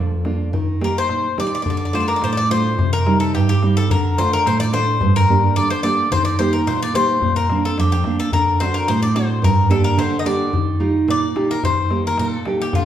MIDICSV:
0, 0, Header, 1, 4, 480
1, 0, Start_track
1, 0, Tempo, 558140
1, 463, Time_signature, 2, 2, 24, 8
1, 5259, Tempo, 551471
1, 11121, End_track
2, 0, Start_track
2, 0, Title_t, "Bouzouki"
2, 0, Program_c, 0, 25
2, 0, Note_on_c, 0, 74, 78
2, 186, Note_off_c, 0, 74, 0
2, 725, Note_on_c, 0, 70, 83
2, 827, Note_off_c, 0, 70, 0
2, 844, Note_on_c, 0, 72, 90
2, 1171, Note_off_c, 0, 72, 0
2, 1201, Note_on_c, 0, 74, 86
2, 1251, Note_off_c, 0, 74, 0
2, 1262, Note_on_c, 0, 74, 61
2, 1319, Note_off_c, 0, 74, 0
2, 1330, Note_on_c, 0, 74, 69
2, 1385, Note_off_c, 0, 74, 0
2, 1395, Note_on_c, 0, 74, 56
2, 1452, Note_off_c, 0, 74, 0
2, 1461, Note_on_c, 0, 74, 59
2, 1513, Note_off_c, 0, 74, 0
2, 1523, Note_on_c, 0, 74, 56
2, 1582, Note_off_c, 0, 74, 0
2, 1593, Note_on_c, 0, 74, 56
2, 1650, Note_off_c, 0, 74, 0
2, 1661, Note_on_c, 0, 74, 53
2, 1675, Note_on_c, 0, 72, 83
2, 1713, Note_off_c, 0, 74, 0
2, 1723, Note_on_c, 0, 74, 55
2, 1781, Note_off_c, 0, 74, 0
2, 1783, Note_off_c, 0, 72, 0
2, 1787, Note_on_c, 0, 70, 78
2, 1795, Note_on_c, 0, 74, 51
2, 1848, Note_off_c, 0, 74, 0
2, 1858, Note_on_c, 0, 74, 60
2, 1900, Note_off_c, 0, 70, 0
2, 1915, Note_off_c, 0, 74, 0
2, 1924, Note_on_c, 0, 72, 87
2, 1932, Note_on_c, 0, 74, 58
2, 1986, Note_off_c, 0, 74, 0
2, 1999, Note_on_c, 0, 74, 72
2, 2029, Note_off_c, 0, 72, 0
2, 2031, Note_off_c, 0, 74, 0
2, 2042, Note_on_c, 0, 74, 89
2, 2148, Note_off_c, 0, 74, 0
2, 2159, Note_on_c, 0, 72, 93
2, 2490, Note_off_c, 0, 72, 0
2, 2519, Note_on_c, 0, 70, 92
2, 2738, Note_off_c, 0, 70, 0
2, 2752, Note_on_c, 0, 69, 86
2, 2862, Note_off_c, 0, 69, 0
2, 2877, Note_on_c, 0, 67, 84
2, 2992, Note_off_c, 0, 67, 0
2, 3003, Note_on_c, 0, 67, 87
2, 3237, Note_off_c, 0, 67, 0
2, 3240, Note_on_c, 0, 69, 95
2, 3347, Note_off_c, 0, 69, 0
2, 3363, Note_on_c, 0, 70, 83
2, 3598, Note_on_c, 0, 72, 93
2, 3603, Note_off_c, 0, 70, 0
2, 3705, Note_off_c, 0, 72, 0
2, 3727, Note_on_c, 0, 70, 90
2, 3829, Note_off_c, 0, 70, 0
2, 3844, Note_on_c, 0, 72, 87
2, 3948, Note_off_c, 0, 72, 0
2, 3955, Note_on_c, 0, 74, 100
2, 4063, Note_off_c, 0, 74, 0
2, 4072, Note_on_c, 0, 72, 97
2, 4437, Note_on_c, 0, 70, 90
2, 4439, Note_off_c, 0, 72, 0
2, 4765, Note_off_c, 0, 70, 0
2, 4782, Note_on_c, 0, 74, 95
2, 4902, Note_off_c, 0, 74, 0
2, 4905, Note_on_c, 0, 72, 89
2, 5012, Note_off_c, 0, 72, 0
2, 5015, Note_on_c, 0, 74, 94
2, 5240, Note_off_c, 0, 74, 0
2, 5262, Note_on_c, 0, 72, 93
2, 5370, Note_off_c, 0, 72, 0
2, 5374, Note_on_c, 0, 74, 84
2, 5489, Note_off_c, 0, 74, 0
2, 5496, Note_on_c, 0, 72, 92
2, 5611, Note_off_c, 0, 72, 0
2, 5619, Note_on_c, 0, 70, 73
2, 5744, Note_off_c, 0, 70, 0
2, 5744, Note_on_c, 0, 72, 78
2, 5855, Note_off_c, 0, 72, 0
2, 5877, Note_on_c, 0, 74, 101
2, 5984, Note_off_c, 0, 74, 0
2, 5988, Note_on_c, 0, 72, 92
2, 6321, Note_off_c, 0, 72, 0
2, 6343, Note_on_c, 0, 70, 84
2, 6567, Note_off_c, 0, 70, 0
2, 6597, Note_on_c, 0, 69, 82
2, 6703, Note_off_c, 0, 69, 0
2, 6721, Note_on_c, 0, 67, 77
2, 6820, Note_off_c, 0, 67, 0
2, 6830, Note_on_c, 0, 67, 80
2, 7067, Note_off_c, 0, 67, 0
2, 7070, Note_on_c, 0, 69, 84
2, 7180, Note_off_c, 0, 69, 0
2, 7188, Note_on_c, 0, 70, 86
2, 7411, Note_off_c, 0, 70, 0
2, 7423, Note_on_c, 0, 72, 89
2, 7545, Note_on_c, 0, 70, 82
2, 7548, Note_off_c, 0, 72, 0
2, 7667, Note_on_c, 0, 72, 84
2, 7669, Note_off_c, 0, 70, 0
2, 7788, Note_off_c, 0, 72, 0
2, 7792, Note_on_c, 0, 74, 84
2, 7901, Note_off_c, 0, 74, 0
2, 7908, Note_on_c, 0, 72, 86
2, 8130, Note_off_c, 0, 72, 0
2, 8156, Note_on_c, 0, 70, 88
2, 8380, Note_off_c, 0, 70, 0
2, 8384, Note_on_c, 0, 69, 78
2, 8496, Note_off_c, 0, 69, 0
2, 8504, Note_on_c, 0, 70, 80
2, 8616, Note_off_c, 0, 70, 0
2, 8628, Note_on_c, 0, 72, 91
2, 8793, Note_off_c, 0, 72, 0
2, 8808, Note_on_c, 0, 75, 69
2, 8864, Note_off_c, 0, 75, 0
2, 8867, Note_on_c, 0, 74, 86
2, 9591, Note_off_c, 0, 74, 0
2, 9602, Note_on_c, 0, 74, 89
2, 9950, Note_off_c, 0, 74, 0
2, 9953, Note_on_c, 0, 70, 92
2, 10059, Note_off_c, 0, 70, 0
2, 10074, Note_on_c, 0, 72, 90
2, 10402, Note_off_c, 0, 72, 0
2, 10442, Note_on_c, 0, 70, 84
2, 10546, Note_off_c, 0, 70, 0
2, 10550, Note_on_c, 0, 70, 89
2, 10646, Note_off_c, 0, 70, 0
2, 10646, Note_on_c, 0, 69, 89
2, 10914, Note_off_c, 0, 69, 0
2, 10916, Note_on_c, 0, 67, 92
2, 11019, Note_off_c, 0, 67, 0
2, 11035, Note_on_c, 0, 65, 74
2, 11121, Note_off_c, 0, 65, 0
2, 11121, End_track
3, 0, Start_track
3, 0, Title_t, "Nylon-string guitar"
3, 0, Program_c, 1, 24
3, 0, Note_on_c, 1, 41, 55
3, 0, Note_on_c, 1, 58, 52
3, 0, Note_on_c, 1, 62, 46
3, 0, Note_on_c, 1, 65, 57
3, 123, Note_off_c, 1, 62, 0
3, 124, Note_off_c, 1, 58, 0
3, 129, Note_off_c, 1, 65, 0
3, 216, Note_on_c, 1, 58, 43
3, 222, Note_on_c, 1, 62, 43
3, 225, Note_on_c, 1, 65, 51
3, 412, Note_off_c, 1, 58, 0
3, 413, Note_off_c, 1, 62, 0
3, 416, Note_off_c, 1, 65, 0
3, 448, Note_off_c, 1, 41, 0
3, 456, Note_on_c, 1, 51, 68
3, 696, Note_on_c, 1, 58, 56
3, 700, Note_on_c, 1, 63, 47
3, 704, Note_on_c, 1, 67, 51
3, 928, Note_off_c, 1, 51, 0
3, 939, Note_on_c, 1, 46, 61
3, 1085, Note_off_c, 1, 58, 0
3, 1088, Note_off_c, 1, 63, 0
3, 1089, Note_off_c, 1, 67, 0
3, 1183, Note_on_c, 1, 58, 43
3, 1188, Note_on_c, 1, 63, 39
3, 1188, Note_on_c, 1, 67, 48
3, 1378, Note_off_c, 1, 58, 0
3, 1379, Note_off_c, 1, 63, 0
3, 1380, Note_off_c, 1, 67, 0
3, 1410, Note_off_c, 1, 46, 0
3, 1425, Note_on_c, 1, 50, 63
3, 1663, Note_on_c, 1, 57, 51
3, 1667, Note_on_c, 1, 62, 47
3, 1671, Note_on_c, 1, 65, 59
3, 1893, Note_off_c, 1, 50, 0
3, 1915, Note_on_c, 1, 45, 62
3, 2050, Note_off_c, 1, 57, 0
3, 2053, Note_off_c, 1, 62, 0
3, 2054, Note_off_c, 1, 65, 0
3, 2153, Note_on_c, 1, 57, 49
3, 2157, Note_on_c, 1, 62, 41
3, 2161, Note_on_c, 1, 65, 48
3, 2344, Note_off_c, 1, 57, 0
3, 2347, Note_off_c, 1, 62, 0
3, 2348, Note_off_c, 1, 65, 0
3, 2379, Note_off_c, 1, 45, 0
3, 2400, Note_on_c, 1, 48, 65
3, 2636, Note_on_c, 1, 55, 54
3, 2641, Note_on_c, 1, 60, 49
3, 2646, Note_on_c, 1, 63, 57
3, 2861, Note_off_c, 1, 48, 0
3, 2885, Note_on_c, 1, 43, 66
3, 3017, Note_off_c, 1, 55, 0
3, 3020, Note_off_c, 1, 60, 0
3, 3024, Note_off_c, 1, 63, 0
3, 3119, Note_on_c, 1, 55, 43
3, 3121, Note_on_c, 1, 60, 44
3, 3126, Note_on_c, 1, 63, 55
3, 3307, Note_off_c, 1, 55, 0
3, 3309, Note_off_c, 1, 60, 0
3, 3310, Note_off_c, 1, 63, 0
3, 3343, Note_off_c, 1, 43, 0
3, 3358, Note_on_c, 1, 50, 64
3, 3600, Note_on_c, 1, 57, 52
3, 3601, Note_on_c, 1, 62, 48
3, 3607, Note_on_c, 1, 65, 59
3, 3818, Note_off_c, 1, 50, 0
3, 3837, Note_on_c, 1, 45, 60
3, 3978, Note_off_c, 1, 62, 0
3, 3979, Note_off_c, 1, 57, 0
3, 3980, Note_off_c, 1, 65, 0
3, 4072, Note_on_c, 1, 57, 53
3, 4075, Note_on_c, 1, 62, 47
3, 4078, Note_on_c, 1, 65, 54
3, 4261, Note_off_c, 1, 57, 0
3, 4262, Note_off_c, 1, 62, 0
3, 4265, Note_off_c, 1, 65, 0
3, 4296, Note_off_c, 1, 45, 0
3, 4313, Note_on_c, 1, 43, 63
3, 4554, Note_on_c, 1, 58, 52
3, 4559, Note_on_c, 1, 62, 53
3, 4559, Note_on_c, 1, 67, 64
3, 4773, Note_off_c, 1, 43, 0
3, 4796, Note_on_c, 1, 50, 57
3, 4932, Note_off_c, 1, 58, 0
3, 4934, Note_off_c, 1, 62, 0
3, 4935, Note_off_c, 1, 67, 0
3, 5018, Note_on_c, 1, 58, 49
3, 5023, Note_on_c, 1, 62, 44
3, 5027, Note_on_c, 1, 67, 55
3, 5212, Note_off_c, 1, 58, 0
3, 5212, Note_off_c, 1, 62, 0
3, 5215, Note_off_c, 1, 67, 0
3, 5252, Note_off_c, 1, 50, 0
3, 5257, Note_on_c, 1, 51, 71
3, 5499, Note_on_c, 1, 58, 52
3, 5505, Note_on_c, 1, 63, 49
3, 5509, Note_on_c, 1, 67, 63
3, 5726, Note_off_c, 1, 51, 0
3, 5742, Note_on_c, 1, 46, 66
3, 5886, Note_off_c, 1, 58, 0
3, 5887, Note_off_c, 1, 63, 0
3, 5891, Note_off_c, 1, 67, 0
3, 5976, Note_on_c, 1, 58, 48
3, 5983, Note_on_c, 1, 63, 46
3, 5989, Note_on_c, 1, 67, 58
3, 6173, Note_off_c, 1, 58, 0
3, 6174, Note_off_c, 1, 63, 0
3, 6179, Note_off_c, 1, 67, 0
3, 6210, Note_off_c, 1, 46, 0
3, 6227, Note_on_c, 1, 46, 61
3, 6470, Note_on_c, 1, 58, 52
3, 6471, Note_off_c, 1, 46, 0
3, 6475, Note_on_c, 1, 60, 50
3, 6480, Note_on_c, 1, 62, 62
3, 6709, Note_off_c, 1, 58, 0
3, 6713, Note_on_c, 1, 41, 65
3, 6855, Note_off_c, 1, 60, 0
3, 6858, Note_off_c, 1, 62, 0
3, 6944, Note_off_c, 1, 41, 0
3, 6947, Note_on_c, 1, 58, 47
3, 6952, Note_on_c, 1, 60, 39
3, 6954, Note_on_c, 1, 62, 54
3, 7139, Note_off_c, 1, 58, 0
3, 7142, Note_off_c, 1, 60, 0
3, 7142, Note_off_c, 1, 62, 0
3, 7194, Note_on_c, 1, 50, 66
3, 7434, Note_on_c, 1, 60, 59
3, 7437, Note_on_c, 1, 62, 45
3, 7440, Note_on_c, 1, 66, 63
3, 7656, Note_off_c, 1, 50, 0
3, 7671, Note_on_c, 1, 45, 59
3, 7815, Note_off_c, 1, 60, 0
3, 7816, Note_off_c, 1, 62, 0
3, 7818, Note_off_c, 1, 66, 0
3, 7906, Note_on_c, 1, 60, 47
3, 7910, Note_on_c, 1, 62, 43
3, 7913, Note_on_c, 1, 66, 52
3, 8098, Note_off_c, 1, 60, 0
3, 8100, Note_off_c, 1, 62, 0
3, 8101, Note_off_c, 1, 66, 0
3, 8134, Note_off_c, 1, 45, 0
3, 8137, Note_on_c, 1, 43, 69
3, 8377, Note_on_c, 1, 58, 57
3, 8379, Note_on_c, 1, 62, 51
3, 8385, Note_on_c, 1, 67, 60
3, 8606, Note_off_c, 1, 43, 0
3, 8618, Note_on_c, 1, 50, 70
3, 8764, Note_off_c, 1, 58, 0
3, 8766, Note_off_c, 1, 62, 0
3, 8768, Note_off_c, 1, 67, 0
3, 8859, Note_on_c, 1, 58, 50
3, 8864, Note_on_c, 1, 62, 43
3, 8870, Note_on_c, 1, 67, 50
3, 9053, Note_off_c, 1, 58, 0
3, 9056, Note_off_c, 1, 62, 0
3, 9060, Note_off_c, 1, 67, 0
3, 9086, Note_off_c, 1, 50, 0
3, 9101, Note_on_c, 1, 51, 65
3, 9337, Note_on_c, 1, 63, 54
3, 9341, Note_on_c, 1, 65, 46
3, 9345, Note_on_c, 1, 67, 64
3, 9567, Note_off_c, 1, 51, 0
3, 9577, Note_on_c, 1, 46, 56
3, 9723, Note_off_c, 1, 63, 0
3, 9725, Note_off_c, 1, 65, 0
3, 9728, Note_off_c, 1, 67, 0
3, 9822, Note_on_c, 1, 63, 46
3, 9826, Note_on_c, 1, 65, 42
3, 9829, Note_on_c, 1, 67, 53
3, 10014, Note_off_c, 1, 63, 0
3, 10016, Note_off_c, 1, 65, 0
3, 10017, Note_off_c, 1, 67, 0
3, 10044, Note_off_c, 1, 46, 0
3, 10063, Note_on_c, 1, 51, 65
3, 10297, Note_on_c, 1, 58, 51
3, 10302, Note_on_c, 1, 63, 48
3, 10306, Note_on_c, 1, 67, 53
3, 10527, Note_off_c, 1, 51, 0
3, 10546, Note_on_c, 1, 46, 57
3, 10683, Note_off_c, 1, 58, 0
3, 10684, Note_off_c, 1, 63, 0
3, 10684, Note_off_c, 1, 67, 0
3, 10782, Note_on_c, 1, 58, 46
3, 10787, Note_on_c, 1, 63, 41
3, 10792, Note_on_c, 1, 67, 53
3, 10972, Note_off_c, 1, 58, 0
3, 10976, Note_off_c, 1, 63, 0
3, 10977, Note_off_c, 1, 67, 0
3, 11007, Note_off_c, 1, 46, 0
3, 11021, Note_on_c, 1, 50, 69
3, 11121, Note_off_c, 1, 50, 0
3, 11121, End_track
4, 0, Start_track
4, 0, Title_t, "Darbuka"
4, 94, Note_on_c, 9, 63, 26
4, 180, Note_off_c, 9, 63, 0
4, 214, Note_on_c, 9, 63, 64
4, 300, Note_off_c, 9, 63, 0
4, 460, Note_on_c, 9, 64, 83
4, 546, Note_off_c, 9, 64, 0
4, 701, Note_on_c, 9, 63, 71
4, 787, Note_off_c, 9, 63, 0
4, 939, Note_on_c, 9, 63, 67
4, 1025, Note_off_c, 9, 63, 0
4, 1065, Note_on_c, 9, 63, 26
4, 1151, Note_off_c, 9, 63, 0
4, 1186, Note_on_c, 9, 63, 72
4, 1272, Note_off_c, 9, 63, 0
4, 1425, Note_on_c, 9, 64, 75
4, 1511, Note_off_c, 9, 64, 0
4, 1669, Note_on_c, 9, 63, 73
4, 1755, Note_off_c, 9, 63, 0
4, 1907, Note_on_c, 9, 63, 77
4, 1993, Note_off_c, 9, 63, 0
4, 2034, Note_on_c, 9, 63, 28
4, 2120, Note_off_c, 9, 63, 0
4, 2156, Note_on_c, 9, 63, 63
4, 2242, Note_off_c, 9, 63, 0
4, 2275, Note_on_c, 9, 63, 28
4, 2361, Note_off_c, 9, 63, 0
4, 2396, Note_on_c, 9, 64, 93
4, 2482, Note_off_c, 9, 64, 0
4, 2635, Note_on_c, 9, 63, 77
4, 2721, Note_off_c, 9, 63, 0
4, 2875, Note_on_c, 9, 63, 73
4, 2961, Note_off_c, 9, 63, 0
4, 3118, Note_on_c, 9, 63, 69
4, 3204, Note_off_c, 9, 63, 0
4, 3355, Note_on_c, 9, 64, 89
4, 3441, Note_off_c, 9, 64, 0
4, 3597, Note_on_c, 9, 63, 81
4, 3683, Note_off_c, 9, 63, 0
4, 3839, Note_on_c, 9, 63, 79
4, 3925, Note_off_c, 9, 63, 0
4, 4069, Note_on_c, 9, 63, 64
4, 4155, Note_off_c, 9, 63, 0
4, 4307, Note_on_c, 9, 64, 92
4, 4393, Note_off_c, 9, 64, 0
4, 4789, Note_on_c, 9, 63, 68
4, 4875, Note_off_c, 9, 63, 0
4, 5029, Note_on_c, 9, 63, 73
4, 5115, Note_off_c, 9, 63, 0
4, 5270, Note_on_c, 9, 64, 78
4, 5357, Note_off_c, 9, 64, 0
4, 5512, Note_on_c, 9, 63, 73
4, 5599, Note_off_c, 9, 63, 0
4, 5636, Note_on_c, 9, 63, 24
4, 5723, Note_off_c, 9, 63, 0
4, 5745, Note_on_c, 9, 63, 76
4, 5832, Note_off_c, 9, 63, 0
4, 5863, Note_on_c, 9, 63, 25
4, 5950, Note_off_c, 9, 63, 0
4, 5983, Note_on_c, 9, 63, 65
4, 6070, Note_off_c, 9, 63, 0
4, 6111, Note_on_c, 9, 63, 25
4, 6198, Note_off_c, 9, 63, 0
4, 6220, Note_on_c, 9, 64, 78
4, 6307, Note_off_c, 9, 64, 0
4, 6460, Note_on_c, 9, 63, 73
4, 6547, Note_off_c, 9, 63, 0
4, 6706, Note_on_c, 9, 63, 70
4, 6793, Note_off_c, 9, 63, 0
4, 6934, Note_on_c, 9, 63, 67
4, 7021, Note_off_c, 9, 63, 0
4, 7182, Note_on_c, 9, 64, 84
4, 7269, Note_off_c, 9, 64, 0
4, 7430, Note_on_c, 9, 63, 80
4, 7517, Note_off_c, 9, 63, 0
4, 7666, Note_on_c, 9, 63, 79
4, 7753, Note_off_c, 9, 63, 0
4, 7908, Note_on_c, 9, 63, 74
4, 7995, Note_off_c, 9, 63, 0
4, 8154, Note_on_c, 9, 64, 95
4, 8241, Note_off_c, 9, 64, 0
4, 8393, Note_on_c, 9, 63, 78
4, 8480, Note_off_c, 9, 63, 0
4, 8628, Note_on_c, 9, 63, 85
4, 8715, Note_off_c, 9, 63, 0
4, 8868, Note_on_c, 9, 63, 69
4, 8955, Note_off_c, 9, 63, 0
4, 9109, Note_on_c, 9, 64, 83
4, 9196, Note_off_c, 9, 64, 0
4, 9584, Note_on_c, 9, 63, 73
4, 9671, Note_off_c, 9, 63, 0
4, 9824, Note_on_c, 9, 63, 72
4, 9911, Note_off_c, 9, 63, 0
4, 9945, Note_on_c, 9, 63, 27
4, 10032, Note_off_c, 9, 63, 0
4, 10063, Note_on_c, 9, 64, 93
4, 10150, Note_off_c, 9, 64, 0
4, 10299, Note_on_c, 9, 63, 73
4, 10386, Note_off_c, 9, 63, 0
4, 10419, Note_on_c, 9, 63, 25
4, 10506, Note_off_c, 9, 63, 0
4, 10535, Note_on_c, 9, 63, 78
4, 10622, Note_off_c, 9, 63, 0
4, 10777, Note_on_c, 9, 63, 79
4, 10864, Note_off_c, 9, 63, 0
4, 11018, Note_on_c, 9, 64, 93
4, 11105, Note_off_c, 9, 64, 0
4, 11121, End_track
0, 0, End_of_file